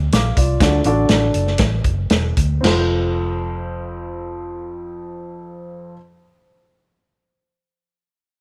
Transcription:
0.12 fingered electric bass A#1, upright piano F5 D6, snare, closed hi-hat
0.37 fingered electric bass C2, upright piano F4 D5, kick, closed hi-hat
0.60 fingered electric bass D2, upright piano D3 D4 F#4 A4 D5, kick, snare, closed hi-hat
0.84 fingered electric bass A1, upright piano D4 F#4 A4 D5, closed hi-hat
1.09 fingered electric bass A1, snare, closed hi-hat
1.34 fingered electric bass F#1, closed hi-hat
1.47 snare
1.58 fingered electric bass A1, kick, snare, closed hi-hat
1.84 fingered electric bass F#1, kick, closed hi-hat
2.10 fingered electric bass E1, snare, closed hi-hat
2.37 fingered electric bass D2, kick, closed hi-hat
2.61 fingered electric bass F1, upright piano F2 C4 F4, crash
2.65 upright piano A4 C5, snare

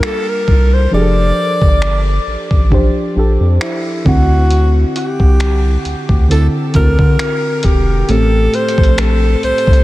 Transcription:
Already playing: synth keys G3 D4 F4 A4 A#4
0.03 alto saxophone A4, finger snap
0.29 alto saxophone A#4
0.48 analog synth bass C2, kick
0.74 alto saxophone C5
0.91 analog synth bass F1, synth keys F3 D4 G4 G#4, alto saxophone D5
1.01 synth keys A4
1.62 analog synth bass G1, kick
1.82 finger snap
2.27 analog synth bass A1
2.51 analog synth bass A1, kick
2.70 synth keys F3 D4 G4 C5, kick
3.15 analog synth bass A#1, synth keys F3 D4 G4 A4
3.41 analog synth bass F2
3.61 alto saxophone E4, finger snap
4.05 analog synth bass D2, synth keys D3 C4 E4 F#5, alto saxophone F#4, kick
4.51 closed hi-hat
4.96 alto saxophone G4, closed hi-hat
5.20 analog synth bass C2, kick
5.40 finger snap, closed hi-hat
5.85 analog synth bass D2, closed hi-hat
6.09 analog synth bass D2, kick
6.29 synth keys D3 C4 E4 A4, alto saxophone A4, closed hi-hat
6.74 analog synth bass D2, synth keys D3 C4 E4 F#4, alto saxophone A#4, kick, closed hi-hat
6.99 analog synth bass D3, kick
7.19 finger snap, closed hi-hat
7.63 analog synth bass E1, alto saxophone G4, kick, closed hi-hat
8.08 analog synth bass A1, synth keys A2 A3 C4 G4, alto saxophone A4, closed hi-hat
8.54 alto saxophone C5, closed hi-hat
8.69 closed hi-hat
8.78 analog synth bass A#1, kick
8.83 closed hi-hat
8.98 alto saxophone A4, finger snap, closed hi-hat
9.43 analog synth bass C2, alto saxophone C5, closed hi-hat
9.58 closed hi-hat
9.67 analog synth bass C2, kick
9.73 closed hi-hat

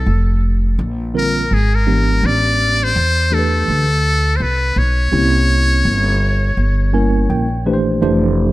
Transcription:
Already playing: muted trumpet A4
0.06 upright bass F1
0.79 upright bass A#1
1.14 tine electric piano D3 G3 C4 F4 A#4, muted trumpet A#4
1.51 upright bass G#1, muted trumpet G#4
1.75 muted trumpet A#4
1.86 tine electric piano E3 G#3 B3 D4 G4
2.23 upright bass A1, muted trumpet D5
2.84 muted trumpet C5
2.96 upright bass E2
3.31 tine electric piano E3 A3 D4 G4 A4, muted trumpet A4
3.39 tine electric piano B4
3.68 upright bass D2
4.36 upright bass C2, muted trumpet C5
4.42 muted trumpet B4
4.76 upright bass B1, muted trumpet C#5
5.12 upright bass C2, tine electric piano A#3 C4 C#4 E4 G4
5.85 upright bass G1
6.57 upright bass G1
6.93 tine electric piano G3 A#3 C#4 E4 A#4 G#5
7.30 upright bass A#1, tine electric piano G5
7.66 tine electric piano E3 A3 D4 G4 B4 C5
7.73 tine electric piano C5
8.01 upright bass F1, tine electric piano E3 A3 D4 G4 C5

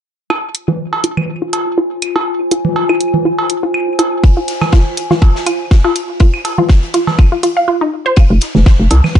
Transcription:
0.30 ambient pad F4, synth arpeggio sound F4, cowbell, claves
0.35 ambient pad C5
0.55 closed hi-hat
0.68 synth arpeggio sound F4, low conga
0.93 ambient pad G#5, cowbell
1.04 synth arpeggio sound F4, closed hi-hat
1.17 low conga, claves
1.42 synth arpeggio sound F4
1.53 closed hi-hat, cowbell
1.78 synth arpeggio sound F4
2.02 closed hi-hat, claves
2.16 synth arpeggio sound F4, cowbell
2.51 synth arpeggio sound F4, closed hi-hat
2.65 low conga
2.76 cowbell
2.89 synth arpeggio sound F4, claves
3.01 closed hi-hat
3.14 low conga
3.25 synth arpeggio sound F4
3.39 cowbell
3.50 closed hi-hat
3.63 synth arpeggio sound F4
3.74 claves
3.99 synth arpeggio sound F4, closed hi-hat, cowbell
4.24 kick, closed hi-hat
4.37 synth arpeggio sound F4
4.48 snare, closed hi-hat
4.61 snare, cowbell, low conga, claves
4.72 synth arpeggio sound F4, kick, snare, closed hi-hat
4.97 closed hi-hat
5.10 synth arpeggio sound F4, snare, low conga
5.22 kick, closed hi-hat, cowbell
5.35 snare
5.46 synth arpeggio sound F4, closed hi-hat, claves
5.71 kick, snare, closed hi-hat
5.84 synth arpeggio sound F4, cowbell
5.95 closed hi-hat
6.20 synth arpeggio sound F4, kick, closed hi-hat
6.34 claves
6.45 closed hi-hat, cowbell
6.58 synth arpeggio sound F4, low conga
6.69 kick, snare, closed hi-hat
6.83 closed hi-hat
6.93 synth arpeggio sound F4, snare, closed hi-hat
7.07 snare, cowbell, low conga
7.19 kick, closed hi-hat, claves
7.32 synth arpeggio sound F4
7.43 synth arpeggio sound F4, closed hi-hat
7.57 synth arpeggio sound F5
7.68 synth arpeggio sound F4
7.81 synth arpeggio sound D#4
8.06 synth arpeggio sound C5
8.16 kick, closed hi-hat, claves
8.30 fm bass F1
8.41 snare, closed hi-hat
8.55 fm bass F1, snare, low conga
8.66 kick, snare, closed hi-hat
8.80 fm bass F1
8.90 fm bass C2, closed hi-hat, cowbell
9.04 snare, low conga, claves
9.15 kick, closed hi-hat

